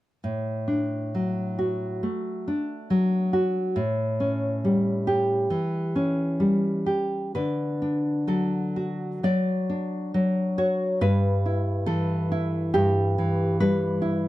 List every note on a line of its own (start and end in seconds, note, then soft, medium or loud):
0.24 2.00 A2 soft
0.68 2.03 D4 soft
1.15 2.47 F#3 soft
1.59 2.90 F#4 soft
2.03 3.32 A3 soft
2.48 3.77 D4 soft
2.90 3.76 F#3 soft
3.33 3.77 F#4 soft
3.76 5.47 A2 soft
4.20 5.51 C#4 soft
4.65 5.96 G3 soft
5.07 6.41 G4 soft
5.50 6.89 E3 soft
5.96 7.38 C#4 soft
6.40 7.37 G3 soft
6.86 7.34 G4 soft
7.35 9.21 D3 soft
7.35 8.24 B4 medium
7.82 9.25 D4 soft
8.27 9.22 F#3 soft
8.27 9.21 A4 soft
8.76 10.15 F#4 soft
9.23 10.13 F#3 soft
9.23 10.55 D5 medium
9.69 11.02 D4 soft
10.14 11.02 F#3 soft
10.58 11.02 F#4 soft
10.58 11.00 C#5 medium
11.01 12.70 G2 medium
11.01 11.84 B4 medium
11.46 12.30 E4 soft
11.86 13.17 E3 soft
11.86 12.70 A4 medium
12.32 13.60 E4 soft
12.74 14.28 G2 soft
12.74 13.56 G4 medium
13.18 14.28 E3 soft
13.60 14.28 G3 soft
13.60 14.28 B4 medium
14.02 14.28 E4 soft